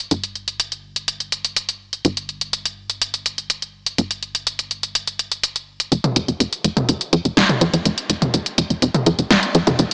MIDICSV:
0, 0, Header, 1, 3, 480
1, 0, Start_track
1, 0, Tempo, 483871
1, 112, Time_signature, 4, 2, 24, 8
1, 9858, End_track
2, 0, Start_track
2, 0, Title_t, "Analog synth bass"
2, 0, Program_c, 0, 38
2, 112, Note_on_c, 0, 31, 85
2, 2008, Note_off_c, 0, 31, 0
2, 2032, Note_on_c, 0, 31, 88
2, 3928, Note_off_c, 0, 31, 0
2, 3952, Note_on_c, 0, 31, 81
2, 5848, Note_off_c, 0, 31, 0
2, 5870, Note_on_c, 0, 29, 96
2, 5957, Note_off_c, 0, 29, 0
2, 6111, Note_on_c, 0, 29, 91
2, 6197, Note_off_c, 0, 29, 0
2, 6232, Note_on_c, 0, 29, 82
2, 6316, Note_off_c, 0, 29, 0
2, 6350, Note_on_c, 0, 29, 95
2, 6437, Note_off_c, 0, 29, 0
2, 6591, Note_on_c, 0, 29, 91
2, 6677, Note_off_c, 0, 29, 0
2, 6713, Note_on_c, 0, 29, 81
2, 6796, Note_off_c, 0, 29, 0
2, 6832, Note_on_c, 0, 29, 99
2, 6918, Note_off_c, 0, 29, 0
2, 7071, Note_on_c, 0, 41, 93
2, 7157, Note_off_c, 0, 41, 0
2, 7193, Note_on_c, 0, 29, 85
2, 7276, Note_off_c, 0, 29, 0
2, 7311, Note_on_c, 0, 29, 101
2, 7397, Note_off_c, 0, 29, 0
2, 7551, Note_on_c, 0, 41, 93
2, 7637, Note_off_c, 0, 41, 0
2, 7673, Note_on_c, 0, 41, 80
2, 7757, Note_off_c, 0, 41, 0
2, 7791, Note_on_c, 0, 29, 100
2, 7877, Note_off_c, 0, 29, 0
2, 8031, Note_on_c, 0, 29, 91
2, 8117, Note_off_c, 0, 29, 0
2, 8154, Note_on_c, 0, 29, 80
2, 8237, Note_off_c, 0, 29, 0
2, 8272, Note_on_c, 0, 29, 101
2, 8358, Note_off_c, 0, 29, 0
2, 8512, Note_on_c, 0, 29, 92
2, 8598, Note_off_c, 0, 29, 0
2, 8633, Note_on_c, 0, 29, 76
2, 8717, Note_off_c, 0, 29, 0
2, 8752, Note_on_c, 0, 29, 108
2, 8838, Note_off_c, 0, 29, 0
2, 8991, Note_on_c, 0, 41, 94
2, 9077, Note_off_c, 0, 41, 0
2, 9113, Note_on_c, 0, 29, 80
2, 9197, Note_off_c, 0, 29, 0
2, 9232, Note_on_c, 0, 29, 97
2, 9318, Note_off_c, 0, 29, 0
2, 9471, Note_on_c, 0, 41, 93
2, 9557, Note_off_c, 0, 41, 0
2, 9594, Note_on_c, 0, 41, 86
2, 9677, Note_off_c, 0, 41, 0
2, 9711, Note_on_c, 0, 29, 100
2, 9797, Note_off_c, 0, 29, 0
2, 9858, End_track
3, 0, Start_track
3, 0, Title_t, "Drums"
3, 111, Note_on_c, 9, 42, 60
3, 210, Note_off_c, 9, 42, 0
3, 233, Note_on_c, 9, 42, 38
3, 333, Note_off_c, 9, 42, 0
3, 352, Note_on_c, 9, 42, 27
3, 451, Note_off_c, 9, 42, 0
3, 474, Note_on_c, 9, 42, 40
3, 573, Note_off_c, 9, 42, 0
3, 592, Note_on_c, 9, 42, 64
3, 691, Note_off_c, 9, 42, 0
3, 714, Note_on_c, 9, 42, 39
3, 813, Note_off_c, 9, 42, 0
3, 953, Note_on_c, 9, 42, 41
3, 1053, Note_off_c, 9, 42, 0
3, 1071, Note_on_c, 9, 42, 57
3, 1171, Note_off_c, 9, 42, 0
3, 1193, Note_on_c, 9, 42, 38
3, 1293, Note_off_c, 9, 42, 0
3, 1312, Note_on_c, 9, 42, 45
3, 1411, Note_off_c, 9, 42, 0
3, 1434, Note_on_c, 9, 42, 41
3, 1533, Note_off_c, 9, 42, 0
3, 1552, Note_on_c, 9, 42, 61
3, 1651, Note_off_c, 9, 42, 0
3, 1674, Note_on_c, 9, 42, 39
3, 1773, Note_off_c, 9, 42, 0
3, 1914, Note_on_c, 9, 42, 41
3, 2013, Note_off_c, 9, 42, 0
3, 2032, Note_on_c, 9, 42, 63
3, 2131, Note_off_c, 9, 42, 0
3, 2153, Note_on_c, 9, 42, 40
3, 2252, Note_off_c, 9, 42, 0
3, 2271, Note_on_c, 9, 42, 29
3, 2370, Note_off_c, 9, 42, 0
3, 2393, Note_on_c, 9, 42, 40
3, 2492, Note_off_c, 9, 42, 0
3, 2512, Note_on_c, 9, 42, 66
3, 2611, Note_off_c, 9, 42, 0
3, 2634, Note_on_c, 9, 42, 43
3, 2733, Note_off_c, 9, 42, 0
3, 2873, Note_on_c, 9, 42, 44
3, 2972, Note_off_c, 9, 42, 0
3, 2991, Note_on_c, 9, 42, 62
3, 3091, Note_off_c, 9, 42, 0
3, 3114, Note_on_c, 9, 42, 42
3, 3213, Note_off_c, 9, 42, 0
3, 3232, Note_on_c, 9, 42, 47
3, 3332, Note_off_c, 9, 42, 0
3, 3354, Note_on_c, 9, 42, 41
3, 3453, Note_off_c, 9, 42, 0
3, 3471, Note_on_c, 9, 42, 62
3, 3571, Note_off_c, 9, 42, 0
3, 3594, Note_on_c, 9, 42, 42
3, 3693, Note_off_c, 9, 42, 0
3, 3833, Note_on_c, 9, 42, 42
3, 3933, Note_off_c, 9, 42, 0
3, 3952, Note_on_c, 9, 42, 64
3, 4051, Note_off_c, 9, 42, 0
3, 4074, Note_on_c, 9, 42, 43
3, 4173, Note_off_c, 9, 42, 0
3, 4192, Note_on_c, 9, 42, 30
3, 4291, Note_off_c, 9, 42, 0
3, 4314, Note_on_c, 9, 42, 42
3, 4413, Note_off_c, 9, 42, 0
3, 4432, Note_on_c, 9, 42, 66
3, 4531, Note_off_c, 9, 42, 0
3, 4554, Note_on_c, 9, 42, 44
3, 4653, Note_off_c, 9, 42, 0
3, 4672, Note_on_c, 9, 42, 30
3, 4771, Note_off_c, 9, 42, 0
3, 4793, Note_on_c, 9, 42, 43
3, 4893, Note_off_c, 9, 42, 0
3, 4912, Note_on_c, 9, 42, 66
3, 5011, Note_off_c, 9, 42, 0
3, 5034, Note_on_c, 9, 42, 43
3, 5133, Note_off_c, 9, 42, 0
3, 5152, Note_on_c, 9, 42, 46
3, 5251, Note_off_c, 9, 42, 0
3, 5273, Note_on_c, 9, 42, 43
3, 5372, Note_off_c, 9, 42, 0
3, 5391, Note_on_c, 9, 42, 67
3, 5490, Note_off_c, 9, 42, 0
3, 5513, Note_on_c, 9, 42, 44
3, 5612, Note_off_c, 9, 42, 0
3, 5753, Note_on_c, 9, 42, 44
3, 5853, Note_off_c, 9, 42, 0
3, 5871, Note_on_c, 9, 42, 65
3, 5971, Note_off_c, 9, 42, 0
3, 5993, Note_on_c, 9, 42, 42
3, 5993, Note_on_c, 9, 45, 83
3, 6092, Note_off_c, 9, 42, 0
3, 6092, Note_off_c, 9, 45, 0
3, 6112, Note_on_c, 9, 42, 95
3, 6211, Note_off_c, 9, 42, 0
3, 6233, Note_on_c, 9, 42, 42
3, 6333, Note_off_c, 9, 42, 0
3, 6352, Note_on_c, 9, 42, 66
3, 6451, Note_off_c, 9, 42, 0
3, 6474, Note_on_c, 9, 42, 43
3, 6573, Note_off_c, 9, 42, 0
3, 6591, Note_on_c, 9, 42, 95
3, 6690, Note_off_c, 9, 42, 0
3, 6713, Note_on_c, 9, 42, 42
3, 6713, Note_on_c, 9, 45, 85
3, 6813, Note_off_c, 9, 42, 0
3, 6813, Note_off_c, 9, 45, 0
3, 6832, Note_on_c, 9, 42, 65
3, 6931, Note_off_c, 9, 42, 0
3, 6953, Note_on_c, 9, 42, 44
3, 7053, Note_off_c, 9, 42, 0
3, 7072, Note_on_c, 9, 42, 96
3, 7171, Note_off_c, 9, 42, 0
3, 7193, Note_on_c, 9, 42, 44
3, 7293, Note_off_c, 9, 42, 0
3, 7312, Note_on_c, 9, 38, 112
3, 7312, Note_on_c, 9, 42, 66
3, 7411, Note_off_c, 9, 38, 0
3, 7411, Note_off_c, 9, 42, 0
3, 7434, Note_on_c, 9, 42, 41
3, 7434, Note_on_c, 9, 45, 85
3, 7533, Note_off_c, 9, 42, 0
3, 7533, Note_off_c, 9, 45, 0
3, 7552, Note_on_c, 9, 42, 101
3, 7651, Note_off_c, 9, 42, 0
3, 7674, Note_on_c, 9, 42, 45
3, 7773, Note_off_c, 9, 42, 0
3, 7792, Note_on_c, 9, 42, 64
3, 7891, Note_off_c, 9, 42, 0
3, 7913, Note_on_c, 9, 42, 43
3, 8013, Note_off_c, 9, 42, 0
3, 8032, Note_on_c, 9, 42, 102
3, 8131, Note_off_c, 9, 42, 0
3, 8154, Note_on_c, 9, 42, 40
3, 8154, Note_on_c, 9, 45, 81
3, 8253, Note_off_c, 9, 42, 0
3, 8253, Note_off_c, 9, 45, 0
3, 8272, Note_on_c, 9, 42, 64
3, 8371, Note_off_c, 9, 42, 0
3, 8394, Note_on_c, 9, 42, 43
3, 8493, Note_off_c, 9, 42, 0
3, 8512, Note_on_c, 9, 42, 105
3, 8611, Note_off_c, 9, 42, 0
3, 8634, Note_on_c, 9, 42, 42
3, 8733, Note_off_c, 9, 42, 0
3, 8752, Note_on_c, 9, 42, 64
3, 8851, Note_off_c, 9, 42, 0
3, 8873, Note_on_c, 9, 42, 43
3, 8873, Note_on_c, 9, 45, 85
3, 8972, Note_off_c, 9, 42, 0
3, 8972, Note_off_c, 9, 45, 0
3, 8991, Note_on_c, 9, 42, 100
3, 9090, Note_off_c, 9, 42, 0
3, 9113, Note_on_c, 9, 42, 43
3, 9213, Note_off_c, 9, 42, 0
3, 9231, Note_on_c, 9, 38, 121
3, 9231, Note_on_c, 9, 42, 64
3, 9330, Note_off_c, 9, 38, 0
3, 9330, Note_off_c, 9, 42, 0
3, 9353, Note_on_c, 9, 42, 44
3, 9452, Note_off_c, 9, 42, 0
3, 9471, Note_on_c, 9, 42, 101
3, 9570, Note_off_c, 9, 42, 0
3, 9593, Note_on_c, 9, 42, 45
3, 9593, Note_on_c, 9, 45, 88
3, 9692, Note_off_c, 9, 42, 0
3, 9692, Note_off_c, 9, 45, 0
3, 9711, Note_on_c, 9, 42, 58
3, 9810, Note_off_c, 9, 42, 0
3, 9858, End_track
0, 0, End_of_file